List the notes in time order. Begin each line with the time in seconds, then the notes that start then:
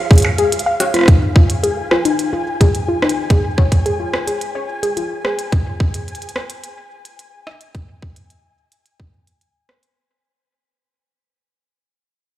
Already playing: F5
0.11 G#4, kick, closed hi-hat
0.13 closed hi-hat
0.15 closed hi-hat
0.18 closed hi-hat
0.20 closed hi-hat
0.22 closed hi-hat, percussion blips
0.38 G#4, closed hi-hat
0.52 closed hi-hat
0.59 closed hi-hat
0.66 F5
0.80 C#5, cross-stick, closed hi-hat
0.94 F4, cross-stick, closed hi-hat
0.96 cross-stick
0.99 cross-stick
1.01 cross-stick
1.03 cross-stick
1.06 D#4 G#5, kick, cross-stick, closed hi-hat
1.36 F4, kick
1.50 closed hi-hat
1.63 G#4, closed hi-hat
1.91 F4, cross-stick
2.05 D#4, closed hi-hat
2.19 closed hi-hat
2.33 F4
2.61 G#4, kick, closed hi-hat
2.75 closed hi-hat
2.88 F4
3.02 D#4, cross-stick
3.09 closed hi-hat
3.30 G#4, kick, closed hi-hat
3.58 C#5, kick
3.72 kick, closed hi-hat
3.86 G#4, closed hi-hat
4.00 F4
4.14 cross-stick
4.27 G#4, closed hi-hat
4.41 closed hi-hat
4.55 C#5
4.83 G#4, closed hi-hat
4.97 F4, closed hi-hat
5.25 G#4, cross-stick
5.39 closed hi-hat
5.52 kick, closed hi-hat
5.80 kick
5.94 closed hi-hat
6.08 closed hi-hat
6.15 closed hi-hat
6.22 closed hi-hat
6.29 closed hi-hat
6.36 cross-stick
6.50 closed hi-hat
6.64 closed hi-hat
7.05 closed hi-hat
7.19 closed hi-hat
7.47 cross-stick
7.61 closed hi-hat
7.75 kick, closed hi-hat
8.02 kick
8.16 closed hi-hat
8.30 closed hi-hat
8.72 closed hi-hat
8.86 closed hi-hat
9.00 kick
9.27 closed hi-hat
9.41 closed hi-hat
9.69 cross-stick
9.83 closed hi-hat